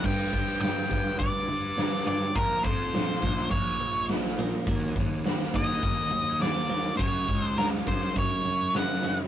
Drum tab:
CC |x-------|--------|--------|--------|
HH |-ooooooo|oooooooo|oooooooo|oooooooo|
SD |--o---o-|--o---o-|--o---o-|--o---o-|
BD |oo-oo---|oo-oo---|oo-oo---|oo-oo---|